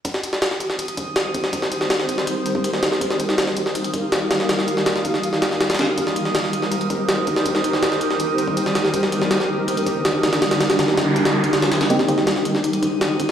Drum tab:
HH |x---x---x---x---x-x-x---x---x---|x---x---x---x---x---x---x---x---|x---x---x---x---x-x-x---x---x---|x---x---x---x---x---x---x-xxx---|
SD |--o---o-o-o---o---------o-----o-|--o---o-o-o---o-----------o-o-o-|--o---o-o-o---o---------o---o-o-|o-o---o-o-o---o---o-o-o-o-ooo---|
BD |o-------------------o-------o---|o---------------------o---------|o-------------------o-----------|------------o-------------------|

HH |x---x---x---x---x-x-x---x---x---|x---x---x---x---x---x---x---x---|x---x---x-------x-x-x---x---x-x-|x-x-x-x-x---x---x-x---x-x-x-x-x-|
SD |--o---o-o-o---o---------o-----o-|--o---o-o-o---o-----------o-o-o-|--o---o-o-o-------------o---o-o-|o-o-o-o-o-o-o-----o-----o-o-o-o-|
BD |o-------------------o-------o---|o---------------------o---------|o-------------------o-----------|----------------o-----o---------|

HH |x---x---x---x---x-x-x---x---x---|
SD |--o---o-o-o---o---------o-------|
BD |o-------------------o-------o---|